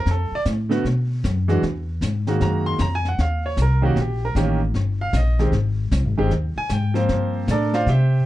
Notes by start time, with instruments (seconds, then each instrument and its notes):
0.06 upright bass F2, brush sweep, snare
0.11 grand piano A4
0.32 grand piano D5, muted upright bass stroke
0.45 upright bass A2, snare, hi-hat pedal
0.69 grand piano D3 A3 B3 F#4, snare
0.84 upright bass B2, brush sweep, snare
1.24 upright bass F#2, snare, hi-hat pedal
1.48 grand piano E3 G#3 D4 F#4, snare
1.63 upright bass E2, brush sweep, snare
2.01 upright bass G#2, snare, hi-hat pedal
2.27 grand piano D#3 G#3 A#3 F#4, snare
2.41 upright bass F#2, grand piano A#5, brush sweep, snare
2.66 grand piano C6
2.79 upright bass F2, grand piano A#5, snare, hi-hat pedal
2.95 grand piano G#5
3.05 grand piano F#5, snare
3.18 upright bass D#2, grand piano F5, brush sweep, snare
3.46 grand piano C#5
3.57 upright bass C2, snare, hi-hat pedal
3.62 grand piano A#4
3.82 grand piano D#3 A#3 C#4 F#4 G4
3.96 upright bass A#1, brush sweep, snare
4.01 grand piano G4
4.25 grand piano A#4
4.35 upright bass A1, grand piano D#3 A#3 C#4 G4, snare, hi-hat pedal
4.74 upright bass G1, brush sweep, snare
5.01 grand piano F5
5.13 upright bass A#1, grand piano D#5, snare, hi-hat pedal
5.39 grand piano D#3 G#3 C4 G4, snare
5.52 upright bass G#1, brush sweep, snare
5.92 upright bass C2, snare, hi-hat pedal
6.05 upright bass G#1
6.18 upright bass G1, grand piano D#3 G#3 C4 G4
6.31 upright bass D#2, brush sweep, snare
6.56 grand piano G#5, muted upright bass stroke
6.69 upright bass G#2, grand piano G5, snare, hi-hat pedal
6.94 grand piano F3 A#3 C4 C5, snare
7.09 upright bass G2, brush sweep, snare
7.47 upright bass A2, grand piano A#4 D5, snare, hi-hat pedal
7.52 grand piano D4 A4
7.74 grand piano F4 C5 D5 F5, snare
7.86 upright bass C3, grand piano G4 C5 E5 G5, brush sweep, snare